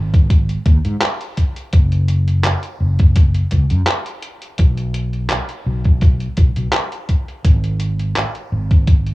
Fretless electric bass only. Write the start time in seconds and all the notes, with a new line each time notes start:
Already playing: G#1
0.66 D#2
0.85 G#2
1.73 F#1
2.80 F#1
3.52 C#2
3.71 F#2
4.59 B1
5.66 B1
6.38 B1
6.57 B1
7.45 G#1
8.52 G#1